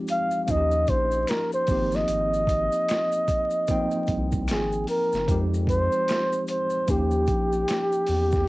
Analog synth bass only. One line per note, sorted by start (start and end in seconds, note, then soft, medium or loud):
0.49 0.85 D#2 loud
0.89 1.25 A#1 medium
1.68 2.05 G#1 medium
2.09 2.69 G#1 loud
4.09 4.50 C2 loud
4.49 4.85 G#1 medium
5.14 5.27 F#1 medium
5.28 5.89 F2 loud
6.89 7.29 D#2 loud
7.28 7.65 A#1 medium
8.09 8.45 E2 medium